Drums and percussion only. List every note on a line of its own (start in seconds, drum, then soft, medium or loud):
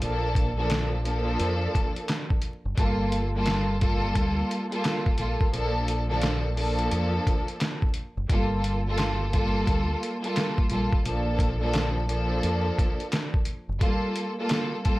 0.02 closed hi-hat medium
0.35 kick medium
0.35 closed hi-hat medium
0.70 snare loud
0.70 clap medium
0.70 closed hi-hat medium
1.05 closed hi-hat medium
1.40 closed hi-hat medium
1.75 kick medium
1.75 closed hi-hat medium
1.96 closed hi-hat soft
2.09 snare loud
2.09 clap medium
2.09 closed hi-hat medium
2.30 kick medium
2.42 closed hi-hat medium
2.78 kick loud
2.78 closed hi-hat loud
3.12 closed hi-hat medium
3.46 snare loud
3.46 clap medium
3.46 closed hi-hat medium
3.81 kick loud
3.81 closed hi-hat medium
4.15 kick medium
4.15 closed hi-hat loud
4.51 closed hi-hat medium
4.72 closed hi-hat soft
4.85 snare loud
4.85 clap medium
4.85 closed hi-hat medium
5.06 kick medium
5.18 closed hi-hat medium
5.41 kick loud
5.54 closed hi-hat medium
5.88 closed hi-hat medium
6.12 snare soft
6.22 snare loud
6.22 clap medium
6.22 closed hi-hat medium
6.57 open hi-hat soft
6.79 closed hi-hat soft
6.92 closed hi-hat medium
7.27 kick medium
7.27 closed hi-hat medium
7.48 closed hi-hat soft
7.61 snare loud
7.61 clap medium
7.61 closed hi-hat medium
7.82 kick medium
7.94 closed hi-hat medium
8.30 kick loud
8.30 closed hi-hat loud
8.64 closed hi-hat medium
8.98 snare loud
8.98 clap medium
8.98 closed hi-hat medium
9.33 kick medium
9.33 closed hi-hat medium
9.67 kick medium
9.67 closed hi-hat loud
10.03 closed hi-hat medium
10.24 closed hi-hat soft
10.36 snare loud
10.36 clap medium
10.36 closed hi-hat medium
10.58 kick medium
10.70 closed hi-hat medium
10.92 kick loud
11.05 closed hi-hat loud
11.39 kick loud
11.39 closed hi-hat medium
11.74 snare loud
11.74 clap loud
11.74 closed hi-hat medium
12.09 closed hi-hat medium
12.43 closed hi-hat loud
12.78 kick medium
12.78 closed hi-hat medium
13.00 closed hi-hat soft
13.12 snare loud
13.12 clap medium
13.12 closed hi-hat medium
13.34 kick medium
13.45 closed hi-hat medium
13.81 kick loud
13.81 closed hi-hat loud
14.16 closed hi-hat medium
14.49 snare loud
14.49 clap medium
14.49 closed hi-hat medium
14.85 kick medium
14.85 closed hi-hat medium